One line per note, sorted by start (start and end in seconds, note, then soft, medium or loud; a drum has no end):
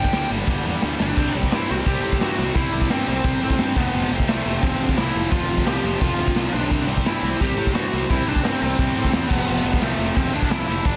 0.00 0.11 G2 medium
0.00 0.12 D3 medium
0.00 0.12 G3 medium
0.00 0.28 G5 medium
0.04 kick medium
0.12 0.25 D2 medium
0.12 0.29 G2 medium
0.12 0.30 D3 medium
0.12 0.31 G3 loud
0.12 snare loud
0.12 open hi-hat medium
0.30 0.41 G1 medium
0.30 0.46 G2 medium
0.30 0.47 D3 medium
0.30 0.47 G3 loud
0.47 0.58 G1 loud
0.47 0.63 G2 medium
0.47 0.64 D3 loud
0.47 0.64 G3 loud
0.47 kick loud
0.47 snare medium
0.64 0.76 E2 medium
0.64 0.81 G2 medium
0.64 0.81 D3 medium
0.64 0.82 G3 medium
0.82 0.94 D2 medium
0.82 0.98 G2 loud
0.82 0.98 D3 loud
0.82 0.99 G3 loud
0.82 snare medium
0.99 1.11 G1 medium
0.99 1.16 G2 medium
0.99 1.15 D3 medium
0.99 1.15 G3 medium
0.99 1.33 D4 medium
0.99 snare loud
1.16 1.28 C2 loud
1.16 1.33 C3 loud
1.16 1.33 G3 loud
1.16 1.34 C4 loud
1.16 kick loud
1.16 crash loud
1.33 1.46 C2 loud
1.33 1.50 C3 medium
1.33 1.50 G3 medium
1.33 1.51 C4 medium
1.43 kick medium
1.50 1.64 G2 medium
1.50 1.67 C3 medium
1.50 1.68 G3 loud
1.50 1.69 C4 loud
1.50 snare loud
1.50 open hi-hat medium
1.55 1.71 E4 medium
1.68 1.81 C2 loud
1.68 1.84 C3 medium
1.68 1.85 G3 loud
1.68 1.87 C4 loud
1.68 1.76 F#4 loud
1.86 1.97 C2 medium
1.86 2.02 C3 medium
1.86 2.03 G3 loud
1.86 2.04 C4 loud
1.86 2.22 G4 loud
1.86 kick loud
1.86 open hi-hat medium
2.03 2.14 A2 medium
2.03 2.19 C3 medium
2.03 2.20 G3 medium
2.03 2.21 C4 medium
2.12 kick loud
2.20 2.32 G2 medium
2.20 2.36 C3 loud
2.20 2.37 G3 loud
2.20 2.38 C4 loud
2.20 2.55 F#4 loud
2.20 snare loud
2.20 open hi-hat medium
2.37 2.49 C2 medium
2.37 2.54 C3 medium
2.37 2.54 G3 medium
2.37 2.56 C4 loud
2.55 2.66 C2 loud
2.55 2.70 C3 loud
2.55 2.71 G3 loud
2.55 2.72 C4 loud
2.55 2.87 E4 loud
2.55 kick loud
2.55 open hi-hat medium
2.71 2.84 C2 loud
2.71 2.88 C3 medium
2.71 2.88 G3 medium
2.71 2.89 C4 medium
2.81 kick medium
2.89 3.02 G2 medium
2.89 3.05 C3 medium
2.89 3.06 G3 loud
2.89 3.07 C4 loud
2.89 3.05 C4 loud
2.89 snare loud
2.89 open hi-hat medium
3.06 3.19 C2 medium
3.06 3.22 C3 medium
3.06 3.23 G3 loud
3.06 3.76 C4 loud
3.06 3.24 C4 loud
3.23 3.36 C2 loud
3.23 3.39 C3 loud
3.23 3.40 G3 loud
3.23 3.42 C4 loud
3.23 kick loud
3.23 open hi-hat medium
3.41 3.54 A2 medium
3.41 3.58 C3 medium
3.41 3.59 G3 medium
3.41 3.60 C4 loud
3.50 kick medium
3.58 3.71 G2 loud
3.58 3.75 C3 loud
3.58 3.76 G3 loud
3.58 6.71 C4 loud
3.58 snare loud
3.58 open hi-hat medium
3.76 3.88 F1 loud
3.76 3.92 F2 loud
3.76 3.92 C3 loud
3.76 3.94 F3 loud
3.76 4.09 B3 loud
3.76 kick loud
3.93 4.05 F1 loud
3.93 4.10 F2 loud
3.93 4.11 C3 loud
3.93 4.12 F3 loud
3.93 open hi-hat medium
4.11 4.22 F1 loud
4.11 4.28 F2 medium
4.11 4.28 C3 medium
4.11 4.28 F3 medium
4.20 kick medium
4.28 4.39 C2 medium
4.28 4.45 F2 loud
4.28 4.45 C3 loud
4.28 4.46 F3 loud
4.28 4.62 A3 loud
4.28 snare loud
4.28 open hi-hat medium
4.46 4.57 F1 medium
4.46 4.61 F2 loud
4.46 4.62 C3 medium
4.46 4.63 F3 loud
4.62 4.74 F1 loud
4.62 4.79 F2 loud
4.62 4.80 C3 loud
4.62 4.80 F3 loud
4.62 4.98 C4 loud
4.62 kick loud
4.62 open hi-hat medium
4.80 4.92 D2 medium
4.80 4.96 F2 medium
4.80 4.97 C3 medium
4.80 4.97 F3 medium
4.89 kick medium
4.97 5.09 C2 loud
4.97 5.12 F2 loud
4.97 5.13 C3 loud
4.97 5.14 F3 loud
4.97 5.31 E4 loud
4.97 snare loud
4.97 open hi-hat medium
5.13 5.26 F1 medium
5.13 5.30 F2 medium
5.13 5.31 C3 medium
5.13 5.31 F3 medium
5.31 5.43 F1 loud
5.31 5.48 F2 loud
5.31 5.48 C3 loud
5.31 5.49 F3 loud
5.31 5.64 F4 loud
5.31 kick loud
5.31 open hi-hat medium
5.48 5.59 F1 loud
5.48 5.65 F2 medium
5.48 5.66 C3 medium
5.48 5.66 F3 medium
5.58 kick medium
5.66 5.77 C2 medium
5.66 5.83 F2 loud
5.66 5.83 C3 loud
5.66 5.84 F3 loud
5.66 6.01 G4 loud
5.66 snare loud
5.66 open hi-hat medium
5.84 5.95 F1 medium
5.84 5.99 F2 loud
5.84 6.00 C3 loud
5.84 6.00 F3 loud
6.00 6.13 F1 loud
6.00 6.17 F2 loud
6.00 6.18 C3 medium
6.00 6.18 F3 loud
6.00 6.55 F4 loud
6.00 kick loud
6.00 open hi-hat medium
6.18 6.30 D2 medium
6.18 6.34 F2 medium
6.18 6.35 C3 medium
6.18 6.36 F3 medium
6.27 kick medium
6.36 6.47 C2 medium
6.36 6.52 F2 loud
6.36 6.52 C3 loud
6.36 6.53 F3 loud
6.36 snare loud
6.36 open hi-hat medium
6.52 6.72 B1 medium
6.52 6.70 F2 medium
6.52 6.69 C3 medium
6.52 6.70 F3 medium
6.52 6.85 D4 medium
6.71 6.82 C2 loud
6.71 6.87 C3 loud
6.71 6.88 G3 loud
6.71 6.89 C4 loud
6.71 kick loud
6.71 crash loud
6.87 6.98 C2 medium
6.87 7.05 C3 medium
6.87 7.06 G3 medium
6.87 7.07 C4 medium
6.97 kick medium
7.06 7.17 G2 medium
7.06 7.22 C3 medium
7.06 7.23 G3 loud
7.06 7.24 C4 loud
7.06 7.38 E4 medium
7.06 snare loud
7.06 open hi-hat medium
7.23 7.34 C2 medium
7.23 7.39 C3 loud
7.23 7.39 G3 loud
7.23 7.41 C4 loud
7.40 7.52 C2 loud
7.40 7.56 C3 loud
7.40 7.57 G3 loud
7.40 7.59 C4 loud
7.40 7.73 G4 loud
7.40 kick loud
7.40 open hi-hat medium
7.58 7.68 A2 medium
7.58 7.73 C3 medium
7.58 7.74 G3 medium
7.58 7.75 C4 loud
7.67 kick medium
7.74 7.86 G2 medium
7.74 7.91 C3 loud
7.74 7.92 G3 loud
7.74 7.93 C4 loud
7.74 8.07 F#4 loud
7.74 snare loud
7.74 open hi-hat medium
7.92 8.04 C2 medium
7.92 8.08 C3 medium
7.92 8.09 G3 medium
7.92 8.10 C4 medium
8.09 8.21 C2 loud
8.09 8.25 C3 medium
8.09 8.26 G3 medium
8.09 8.28 C4 loud
8.09 8.28 E4 loud
8.09 kick loud
8.09 open hi-hat medium
8.26 8.38 C2 loud
8.26 8.42 C3 medium
8.26 8.43 G3 medium
8.26 8.44 C4 medium
8.26 8.43 D4 medium
8.36 kick loud
8.43 8.55 G2 medium
8.43 8.60 C3 loud
8.43 8.61 G3 loud
8.43 8.60 C4 medium
8.43 8.62 C4 loud
8.43 snare loud
8.43 open hi-hat medium
8.61 8.72 C2 medium
8.61 8.77 C3 medium
8.61 8.78 G3 loud
8.61 9.26 C4 loud
8.61 8.79 C4 loud
8.78 8.90 C2 loud
8.78 8.94 C3 medium
8.78 8.95 G3 loud
8.78 8.95 C4 loud
8.78 kick loud
8.78 open hi-hat medium
8.95 9.07 A2 medium
8.95 9.12 C3 medium
8.95 9.12 G3 medium
8.95 9.13 C4 medium
9.04 kick medium
9.13 9.25 E2 medium
9.13 9.29 C3 loud
9.13 9.30 G3 loud
9.13 9.30 C4 loud
9.13 snare loud
9.13 open hi-hat medium
9.28 9.41 F1 loud
9.28 9.45 F2 loud
9.28 9.46 C3 medium
9.28 9.46 F3 loud
9.28 9.82 B3 loud
9.28 kick loud
9.28 crash loud
9.46 9.59 F1 loud
9.46 9.62 F2 loud
9.46 9.63 C3 medium
9.46 9.64 F3 loud
9.64 9.75 F1 loud
9.64 9.80 F2 medium
9.64 9.80 C3 medium
9.64 9.81 F3 loud
9.73 kick loud
9.81 9.92 C2 medium
9.81 9.97 F2 medium
9.81 9.98 C3 loud
9.81 9.98 F3 loud
9.81 10.16 A3 medium
9.81 snare loud
9.81 open hi-hat medium
9.98 10.10 F1 loud
9.98 10.14 F2 loud
9.98 10.15 C3 loud
9.98 10.16 F3 loud
10.15 10.27 F1 loud
10.15 10.32 F2 loud
10.15 10.33 C3 loud
10.15 10.33 F3 loud
10.15 10.34 C4 loud
10.15 kick loud
10.15 open hi-hat medium
10.33 10.45 D2 medium
10.33 10.48 F2 medium
10.33 10.49 C3 medium
10.33 10.50 F3 loud
10.33 10.51 D4 medium
10.42 kick medium
10.49 10.61 C2 medium
10.49 10.67 F2 loud
10.49 10.68 C3 loud
10.49 10.68 F3 loud
10.49 10.66 E4 medium
10.49 snare loud
10.49 open hi-hat medium
10.67 10.79 F1 loud
10.67 10.84 F2 medium
10.67 10.85 C3 medium
10.67 10.85 F3 loud
10.67 10.86 E4 medium
10.84 10.96 G1 medium
10.84 10.97 G2 medium
10.84 10.97 D3 loud
10.84 10.97 G3 loud
10.84 10.97 D4 loud
10.84 kick loud
10.84 open hi-hat medium